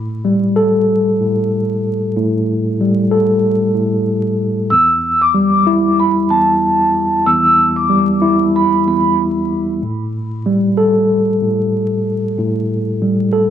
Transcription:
Already playing: tine electric piano A2
0.25 tine electric piano G3
0.56 tine electric piano A4
1.20 tine electric piano A2
2.16 tine electric piano A2
2.81 tine electric piano G3
3.11 tine electric piano A4
3.75 tine electric piano A2
4.70 tine electric piano E2, vibraphone E6
5.21 vibraphone D6
5.34 tine electric piano G3
5.67 tine electric piano E4
6.00 vibraphone B5
6.30 tine electric piano E2, vibraphone A5
7.26 tine electric piano E2, vibraphone E6
7.76 vibraphone D6
7.89 tine electric piano G3
8.22 tine electric piano E4
8.56 vibraphone B5
8.87 tine electric piano E2, vibraphone B5
9.83 tine electric piano A2
10.46 tine electric piano G3
10.78 tine electric piano A4
11.42 tine electric piano A2
12.38 tine electric piano A2
13.02 tine electric piano G3
13.33 tine electric piano A4

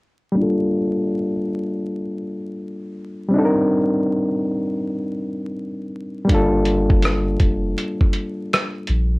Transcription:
0.32 reed electric piano G3 A#3
0.37 reed electric piano D4 F4
0.42 reed electric piano A4
3.29 reed electric piano G3 C4
3.34 reed electric piano D4 D#4
3.38 reed electric piano A4
3.45 reed electric piano A#4
6.25 reed electric piano G3 A#3
6.29 sub bass G1, reed electric piano D4 F4, kick, closed hi-hat
6.34 reed electric piano A4
6.65 closed hi-hat
6.90 kick
7.02 cross-stick, closed hi-hat
7.40 sub bass F1, kick, closed hi-hat
7.78 closed hi-hat
8.01 kick
8.13 closed hi-hat
8.53 cross-stick, closed hi-hat
8.87 sub bass A#1, closed hi-hat

